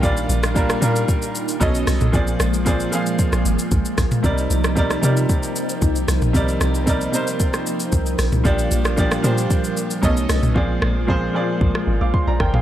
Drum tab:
HH |--------------o-|--------------o-|--------------o-|--------------o-|
SH |xxxxxxxxxxxxxxxx|xxxxxxxxxxxxxxxx|xxxxxxxxxxxxxxxx|xxxxxxxxxxxxxxxx|
SD |---r-r--------r-|--r------r----r-|---r-r--------r-|--r------r----r-|
T2 |---------------o|---------------o|---------------o|---------------o|
BD |o---o---o---o---|o---o---o---o-o-|o---o---o---o---|o---o---o---o---|

HH |--------------o-|----------------|
SH |xxxxxxxxxxxxxxxx|----------------|
SD |---r-r--------r-|--r------r----r-|
T2 |---------------o|---------------o|
BD |o---o---o---o---|o---o---o---o-o-|